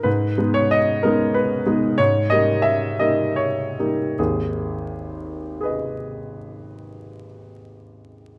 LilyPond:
<<
  \new Staff \with { instrumentName = "Grand piano" } { \time 3/4 \key gis \minor \tempo 4 = 86 << { b'8. cis''16 dis''8 ais'8 b'4 | cis''8 dis''8 e''8 dis''8 cis''8 r8 | gis'2.~ | gis'2. | } \\ { r2. | r2. | r2 <gis' b' dis''>4~ | <gis' b' dis''>2. | } >> }
  \new Staff \with { instrumentName = "Grand piano" } { \time 3/4 \key gis \minor gis,8 <gis b dis'>4 <gis b dis'>4 <gis b dis'>8 | gis,8 <g ais dis'>4 <g ais dis'>4 <g ais dis'>8 | <gis,, dis,>2.~ | <gis,, dis,>2. | }
>>